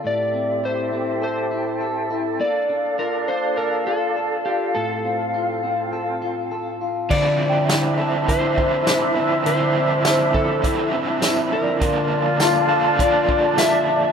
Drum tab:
CC |--------|--------|--------|x-------|
HH |--------|--------|--------|--x-x-x-|
TB |--------|--------|--------|--x---x-|
SD |--------|--------|--------|--o---o-|
BD |--------|--------|--------|o---oo--|

CC |--------|--------|
HH |x-x-x-x-|x-x-x-x-|
TB |--x---x-|--x---x-|
SD |--o---o-|--o---o-|
BD |---oo---|o---oo--|